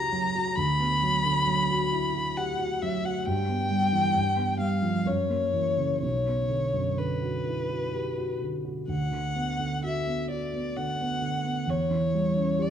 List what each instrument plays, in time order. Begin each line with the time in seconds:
Already playing: grand piano C#2 C#3 F#3 A#3 E4 F#4 G4, violin A#5
0.12 grand piano F#3
0.35 grand piano F#4
0.56 grand piano D2, violin B5
0.79 grand piano B3
1.03 grand piano F#3
1.25 grand piano D3
1.46 grand piano F#3
1.71 grand piano F#4
1.92 grand piano E4
2.14 grand piano F#4
2.37 grand piano G4, violin F#5
2.59 grand piano F#4
2.82 grand piano F#3, violin E5
3.04 grand piano F#4, violin F#5
3.26 grand piano G2, violin G5
3.48 grand piano B3
3.71 grand piano G3
3.93 grand piano E3
4.14 grand piano G2
4.36 grand piano B3
4.59 grand piano G3, violin F5
4.82 grand piano F3
5.06 grand piano F#2, violin C#5
5.29 grand piano A#3
5.54 grand piano E3
5.77 grand piano C#3
6.02 grand piano B1, violin C#5
6.25 grand piano B3
6.49 grand piano D3
6.74 grand piano F#2
6.97 grand piano D3, violin B4
7.22 grand piano F#4
7.46 grand piano E4
7.69 grand piano F#4
7.93 grand piano G4
8.18 grand piano F#4
8.41 grand piano D3
8.65 grand piano F#4
8.88 grand piano D2, violin F#5
9.12 grand piano D3
9.35 grand piano B3
9.59 grand piano D3
9.83 grand piano F#4, violin E5
10.06 grand piano B3
10.30 grand piano F#4, violin D5
10.53 grand piano B3
10.77 grand piano D3, violin F#5
11.00 grand piano B3
11.22 grand piano D3
11.44 grand piano B3
11.66 grand piano E2, violin C#5
11.91 grand piano E3
12.14 grand piano G3
12.36 grand piano C#4
12.59 grand piano G4, violin D5